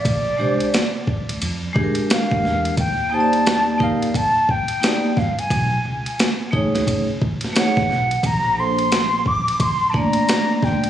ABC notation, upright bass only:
X:1
M:4/4
L:1/16
Q:"Swing 16ths" 1/4=88
K:Bblyd
V:1 name="Upright bass" clef=bass
B,,,2 C,, z4 D,, F,,2 z4 E,,2 | _E,,8- E,,3 z3 G,, z | =B,,,2 ^C,, z4 ^D,, ^F,,,2 z4 B,,,2 | B,,,8- B,,,3 z3 D,, z |]